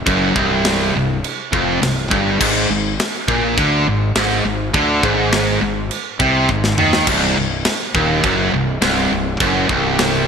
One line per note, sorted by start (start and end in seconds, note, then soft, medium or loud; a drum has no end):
0.06 0.34 F#1 loud
0.06 0.35 F#2 loud
0.06 kick loud
0.06 china medium
0.36 0.91 C1 medium
0.36 0.94 C2 loud
0.36 kick loud
0.65 snare loud
0.65 china medium
0.95 1.23 C1 medium
0.95 1.18 C2 medium
1.24 china medium
1.53 1.80 F1 loud
1.53 1.81 F2 loud
1.53 kick loud
1.81 2.10 C1 medium
1.81 2.05 C2 medium
1.81 snare loud
1.81 china medium
2.10 2.39 G1 loud
2.10 2.40 G2 loud
2.10 kick loud
2.40 2.68 G#1 medium
2.40 2.69 G#2 loud
2.40 kick loud
2.40 crash loud
2.40 china medium
2.70 2.97 G#1 medium
2.70 2.94 G#2 medium
3.00 snare loud
3.00 china medium
3.28 3.55 A#1 loud
3.28 3.57 A#2 loud
3.28 kick loud
3.57 3.85 D2 medium
3.57 3.86 D3 loud
3.57 kick loud
3.57 china medium
3.87 4.14 G#1 medium
3.87 4.10 G#2 medium
4.15 4.43 G#1 medium
4.15 4.44 G#2 loud
4.15 snare loud
4.15 china medium
4.45 4.72 G#1 medium
4.45 4.69 G#2 medium
4.74 5.01 D2 loud
4.74 5.03 D3 loud
4.74 kick loud
4.74 china medium
5.03 5.58 G#1 medium
5.03 5.60 G#2 loud
5.03 kick loud
5.32 snare loud
5.32 china medium
5.61 5.89 G#1 medium
5.61 5.85 G#2 medium
5.91 china medium
6.20 6.47 C2 loud
6.20 6.48 C3 loud
6.20 kick loud
6.49 6.76 G#1 medium
6.49 6.73 G#2 medium
6.49 kick medium
6.64 snare medium
6.78 7.05 D#2 medium
6.78 7.07 D#3 loud
6.78 mid tom medium
6.93 snare loud
7.07 7.34 C1 loud
7.07 7.36 C2 loud
7.07 kick loud
7.07 crash loud
7.07 china medium
7.37 7.65 C1 medium
7.37 7.60 C2 medium
7.65 snare loud
7.65 china medium
7.95 8.22 D#1 medium
7.95 8.23 D#2 loud
7.95 kick loud
8.24 8.51 F#1 loud
8.24 8.53 F#2 loud
8.24 kick loud
8.24 china medium
8.53 8.81 C1 medium
8.53 8.77 C2 medium
8.81 9.09 C1 loud
8.81 9.10 C2 loud
8.81 snare loud
8.81 china medium
9.12 9.39 C1 medium
9.12 9.35 C2 medium
9.40 9.68 F#1 loud
9.40 9.69 F#2 loud
9.40 kick loud
9.40 china medium
9.69 10.24 C1 loud
9.69 10.26 C2 loud
9.69 kick loud
9.99 snare loud
9.99 china medium